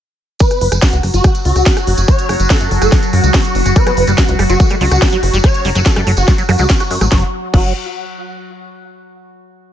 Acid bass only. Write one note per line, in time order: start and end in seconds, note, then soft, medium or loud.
3.76 3.81 G3 medium
3.87 3.91 F#3 medium
4.08 4.12 G3 medium
4.18 4.23 F#3 medium
4.39 4.44 G3 medium
4.50 4.54 F#3 medium
4.70 4.75 G3 medium
4.81 4.86 F#3 medium
5.02 5.07 G3 medium
5.12 5.17 F#3 medium
5.33 5.38 G3 medium
5.44 5.49 F#3 medium
5.65 5.70 G3 medium
5.75 5.80 F#3 medium
5.96 6.01 G3 medium
6.07 6.12 F#3 medium
6.28 6.33 G3 medium
6.38 6.43 F#3 medium
6.49 6.52 F#3 loud
6.59 6.64 F#3 loud
6.70 6.73 C#4 medium
6.80 6.83 F#4 medium
6.91 6.96 F#3 medium
7.01 7.06 F#3 medium
7.12 7.23 F#3 loud
7.54 7.73 F#3 medium